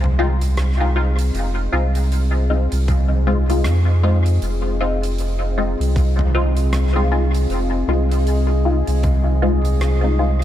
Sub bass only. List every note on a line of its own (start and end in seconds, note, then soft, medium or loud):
0.00 1.31 C2 medium
1.34 1.69 F1 loud
1.73 2.68 C2 medium
2.73 3.67 C2 loud
3.65 4.39 F2 loud
4.42 5.76 F1 loud
5.80 7.47 C2 loud
7.50 7.85 F1 loud
7.88 8.83 C2 loud
8.88 10.44 C2 loud